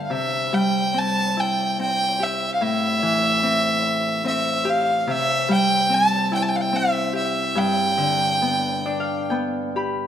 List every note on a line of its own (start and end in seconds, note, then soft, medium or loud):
0.00 0.14 G2 soft
0.00 0.14 D3 soft
0.00 0.16 B3 soft
0.00 1.55 D4 soft
0.00 1.09 F5 soft
0.00 1.21 G5 soft
0.04 0.12 F5 soft
0.10 2.67 C3 medium
0.10 0.55 E5 medium
0.53 2.67 G3 soft
0.53 1.00 G5 medium
0.94 1.79 C4 soft
0.98 1.41 A5 medium
1.37 3.98 E4 soft
1.37 1.80 G5 medium
1.79 3.43 C4 soft
1.79 2.24 G5 medium
2.20 4.55 G4 soft
2.20 2.53 E5 medium
2.54 2.63 F5 medium
2.61 5.13 A2 medium
2.61 4.26 E5 loud
3.02 5.13 E3 soft
3.43 4.24 C4 soft
4.24 5.89 C4 soft
4.24 4.71 E5 medium
4.65 7.00 G4 medium
4.69 5.00 F5 medium
5.00 5.12 F5 medium
5.07 7.62 C3 medium
5.07 5.50 E5 medium
5.49 7.62 G3 medium
5.53 5.95 G5 loud
5.89 6.72 C4 soft
5.94 6.34 A5 loud
6.32 8.93 E4 medium
6.32 6.44 G5 medium
6.42 6.50 A5 medium
6.48 6.58 G5 medium
6.56 6.62 F5 soft
6.61 6.78 G5 medium
6.73 8.48 C4 medium
6.73 7.16 E5 medium
7.13 9.48 G4 soft
7.13 7.59 E5 medium
7.55 10.07 G2 medium
7.55 9.32 G5 medium
7.98 10.07 D3 medium
8.42 9.31 B3 soft
8.85 10.07 D4 soft
8.85 10.07 D5 medium
9.00 10.07 F5 medium
9.30 10.07 B3 soft
9.30 10.07 G5 medium
9.76 10.07 G4 soft
9.76 10.07 B5 medium